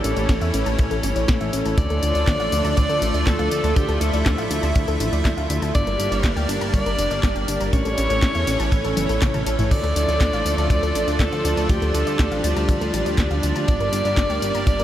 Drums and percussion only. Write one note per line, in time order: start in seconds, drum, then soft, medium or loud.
0.04 closed hi-hat medium
0.04 tambourine medium
0.17 closed hi-hat soft
0.17 tambourine soft
0.29 kick loud
0.29 snare loud
0.29 closed hi-hat medium
0.29 tambourine soft
0.41 closed hi-hat soft
0.41 tambourine soft
0.54 closed hi-hat medium
0.54 tambourine medium
0.66 closed hi-hat soft
0.66 tambourine soft
0.79 kick loud
0.79 closed hi-hat medium
0.79 tambourine soft
0.91 closed hi-hat soft
0.91 tambourine soft
1.03 closed hi-hat medium
1.03 tambourine medium
1.16 closed hi-hat soft
1.16 tambourine soft
1.28 kick loud
1.28 snare loud
1.28 closed hi-hat medium
1.28 tambourine soft
1.41 closed hi-hat soft
1.53 closed hi-hat medium
1.53 tambourine medium
1.65 closed hi-hat soft
1.65 tambourine soft
1.78 kick loud
1.78 closed hi-hat medium
1.78 tambourine soft
1.90 closed hi-hat soft
2.03 closed hi-hat medium
2.03 tambourine medium
2.15 closed hi-hat soft
2.15 tambourine soft
2.27 kick loud
2.27 snare loud
2.27 clap loud
2.27 closed hi-hat medium
2.27 tambourine soft
2.40 closed hi-hat soft
2.40 tambourine soft
2.52 closed hi-hat medium
2.52 tambourine medium
2.65 closed hi-hat soft
2.65 tambourine soft
2.77 kick loud
2.77 closed hi-hat medium
2.77 tambourine soft
2.90 closed hi-hat soft
2.90 tambourine soft
3.02 closed hi-hat medium
3.02 tambourine medium
3.14 closed hi-hat soft
3.14 tambourine soft
3.27 kick loud
3.27 snare loud
3.27 clap loud
3.27 closed hi-hat medium
3.27 tambourine soft
3.39 closed hi-hat soft
3.51 closed hi-hat medium
3.51 tambourine medium
3.64 closed hi-hat soft
3.64 tambourine soft
3.76 kick loud
3.76 closed hi-hat medium
3.76 tambourine soft
3.89 closed hi-hat soft
4.01 closed hi-hat medium
4.01 tambourine medium
4.14 closed hi-hat soft
4.14 tambourine soft
4.26 kick loud
4.26 snare loud
4.26 clap medium
4.26 closed hi-hat medium
4.26 tambourine soft
4.38 closed hi-hat soft
4.38 tambourine soft
4.51 closed hi-hat loud
4.51 tambourine medium
4.63 closed hi-hat soft
4.63 tambourine soft
4.75 kick loud
4.75 closed hi-hat medium
4.75 tambourine soft
4.88 closed hi-hat soft
4.88 tambourine soft
5.00 closed hi-hat medium
5.00 tambourine medium
5.13 closed hi-hat soft
5.13 tambourine soft
5.25 kick loud
5.25 snare loud
5.25 clap medium
5.25 closed hi-hat medium
5.25 tambourine soft
5.38 closed hi-hat soft
5.50 closed hi-hat loud
5.50 tambourine medium
5.62 closed hi-hat soft
5.62 tambourine soft
5.75 kick loud
5.75 closed hi-hat medium
5.75 tambourine soft
5.87 closed hi-hat soft
6.00 closed hi-hat loud
6.00 tambourine medium
6.12 closed hi-hat soft
6.12 tambourine soft
6.24 kick loud
6.24 snare loud
6.24 clap loud
6.24 closed hi-hat medium
6.24 tambourine soft
6.37 closed hi-hat soft
6.37 tambourine soft
6.49 closed hi-hat loud
6.49 tambourine medium
6.61 closed hi-hat soft
6.61 tambourine soft
6.74 kick loud
6.74 closed hi-hat medium
6.74 tambourine soft
6.86 closed hi-hat soft
6.86 tambourine soft
6.99 closed hi-hat medium
6.99 tambourine medium
7.11 closed hi-hat soft
7.11 tambourine soft
7.23 kick loud
7.23 snare loud
7.23 clap loud
7.23 closed hi-hat medium
7.23 tambourine soft
7.36 closed hi-hat soft
7.48 closed hi-hat loud
7.48 tambourine medium
7.61 closed hi-hat soft
7.61 tambourine soft
7.73 kick loud
7.73 closed hi-hat medium
7.73 tambourine soft
7.85 closed hi-hat soft
7.85 tambourine soft
7.98 closed hi-hat loud
7.98 tambourine medium
8.10 closed hi-hat soft
8.10 tambourine soft
8.22 kick loud
8.22 snare loud
8.22 clap loud
8.22 closed hi-hat medium
8.22 tambourine soft
8.35 closed hi-hat soft
8.35 tambourine soft
8.47 snare soft
8.47 closed hi-hat loud
8.47 tambourine medium
8.60 closed hi-hat soft
8.60 tambourine soft
8.72 kick loud
8.72 closed hi-hat medium
8.72 tambourine soft
8.85 closed hi-hat soft
8.85 tambourine soft
8.97 closed hi-hat loud
8.97 high tom medium
8.97 tambourine medium
9.09 closed hi-hat soft
9.09 tambourine soft
9.22 kick loud
9.22 snare loud
9.22 clap loud
9.22 closed hi-hat medium
9.22 mid tom medium
9.22 tambourine soft
9.34 closed hi-hat soft
9.34 mid tom medium
9.34 tambourine soft
9.46 closed hi-hat loud
9.46 tambourine medium
9.59 closed hi-hat soft
9.59 mid tom medium
9.59 tambourine soft
9.71 kick loud
9.71 closed hi-hat medium
9.71 tambourine soft
9.71 crash medium
9.84 closed hi-hat soft
9.96 closed hi-hat loud
9.96 tambourine medium
10.09 closed hi-hat soft
10.09 tambourine soft
10.21 kick loud
10.21 snare loud
10.21 clap loud
10.21 closed hi-hat medium
10.21 tambourine soft
10.33 closed hi-hat soft
10.33 tambourine soft
10.46 closed hi-hat loud
10.46 tambourine medium
10.58 closed hi-hat soft
10.58 tambourine soft
10.70 kick loud
10.70 closed hi-hat medium
10.70 tambourine soft
10.83 closed hi-hat soft
10.83 tambourine soft
10.95 closed hi-hat loud
10.95 tambourine medium
11.08 closed hi-hat soft
11.08 tambourine soft
11.19 kick loud
11.19 snare loud
11.19 clap loud
11.19 closed hi-hat medium
11.19 tambourine soft
11.33 closed hi-hat soft
11.45 closed hi-hat loud
11.45 tambourine medium
11.57 closed hi-hat soft
11.57 tambourine soft
11.69 kick loud
11.69 closed hi-hat medium
11.69 tambourine soft
11.82 closed hi-hat soft
11.95 closed hi-hat loud
11.95 tambourine medium
12.07 closed hi-hat soft
12.07 tambourine soft
12.19 kick loud
12.19 snare loud
12.19 clap loud
12.19 closed hi-hat medium
12.19 tambourine soft
12.32 closed hi-hat soft
12.32 tambourine soft
12.44 closed hi-hat loud
12.44 tambourine medium
12.57 closed hi-hat soft
12.57 tambourine soft
12.69 kick loud
12.69 closed hi-hat medium
12.69 tambourine soft
12.81 closed hi-hat soft
12.81 tambourine soft
12.94 closed hi-hat medium
12.94 tambourine medium
13.06 closed hi-hat soft
13.06 tambourine soft
13.18 kick loud
13.18 snare loud
13.18 clap loud
13.18 closed hi-hat medium
13.18 tambourine soft
13.31 closed hi-hat soft
13.43 closed hi-hat loud
13.43 tambourine medium
13.56 closed hi-hat soft
13.56 tambourine soft
13.68 kick loud
13.68 closed hi-hat medium
13.68 tambourine soft
13.80 closed hi-hat soft
13.93 closed hi-hat medium
13.93 tambourine medium
14.05 closed hi-hat soft
14.05 tambourine soft
14.17 kick loud
14.17 snare loud
14.17 clap loud
14.17 closed hi-hat medium
14.17 tambourine soft
14.30 closed hi-hat soft
14.30 tambourine soft
14.42 closed hi-hat medium
14.42 tambourine medium
14.55 closed hi-hat soft
14.55 tambourine soft
14.67 kick loud
14.67 closed hi-hat medium
14.67 tambourine soft
14.79 closed hi-hat soft
14.79 tambourine soft